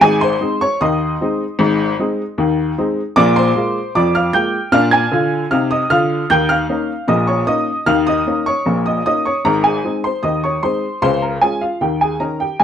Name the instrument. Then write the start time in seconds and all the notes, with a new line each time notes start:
upright piano
0.01 G#1 G#2 G#4 G#5
0.21 C5 C6
0.41 G#3 C4 D#4
0.61 C#5 C#6
0.81 D#2 D#3 D#5 C6 D#6
1.21 G#3 C4 D#4
1.59 G#1 G#2
2.00 G#3 C4 D#4
2.38 D#2 D#3
2.78 G#3 C4 D#4
3.16 A#1 A#2 D5 D6
3.36 C5 C6
3.55 G#3 A#3 F4
3.95 F2 F3 D5 D6
4.15 F5 F6
4.33 G#3 A#3 F4 G5 G6
4.72 A#2 D4 F5 F6
4.91 G#5 G#6
5.11 D3 F4
5.51 C3 D#4 F5 F6
5.71 D#5 D#6
5.90 D3 F4 F5 F6
6.30 D#2 D#3 G5 G6
6.49 F5 F6
6.70 A#3 C#4 D#4
7.08 A#1 A#2 D#5 D#6
7.27 C#5 C#6
7.47 A#3 C#4 D#4 D#5 D#6
7.86 D#2 D#3 F5 F6
8.07 D#5 D#6
8.27 A#3 C#4 D#4
8.46 C#5 C#6
8.66 A#1 A#2
8.86 D#5 D#6
9.06 A#3 C#4 D#4 D#5 D#6
9.25 C#5 C#6
9.45 G#1 G#2 A#4 A#5
9.64 G#4 G#5
9.84 G#3 C4 D#4
10.04 C5 C6
10.23 D#2 D#3 D#5 D#6
10.44 C#5 C#6
10.62 G#3 C4 D#4 C5 C6
11.02 C#2 C#3 C5 C6
11.22 A#4 A#5
11.41 G#3 C#4 F4 G#4 G#5
11.61 F4 F5
11.81 D#2 D#3 G4 G5
12.01 G#4 G#5
12.20 D#3 C#4 D#4 A#4 A#5
12.40 G4 G5
12.60 G#1 G#2 G#5